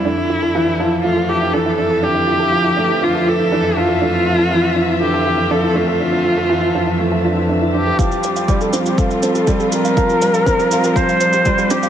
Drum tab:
SH |----------------|----------------|----------------|----------------|
BD |----------------|----------------|----------------|----------------|

SH |xxxxxxxxxxxxxxxx|xxxxxxxxxxxxxxxx|
BD |o---o---o---o---|o---o---o---o---|